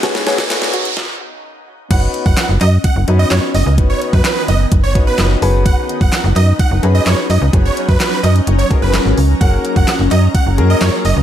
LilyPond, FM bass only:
\new Staff \with { instrumentName = "FM bass" } { \clef bass \time 4/4 \key cis \mixolydian \tempo 4 = 128 r1 | fis,,8 r16 fis,,16 r16 fis,,16 fis,8 r16 fis,,16 fis,8 fis,16 r16 fis,,16 cis,16 | fis,,8 r16 fis,16 r8 fis,,8 fis,,8 gis,,8 fis,,8 fis,,8~ | fis,,8 r16 fis,,16 r16 fis,,16 fis,8 r16 fis,,16 fis,8 fis,16 r16 fis,16 cis,16 |
fis,,8 r16 fis,16 r8 fis,8 fis,,8 fis,,16 fis,,8 gis,,16 cis,8 | fis,,8 r16 fis,,16 r16 fis,,16 fis,8 r16 fis,,16 fis,8 fis,16 r16 fis,,16 cis,16 | }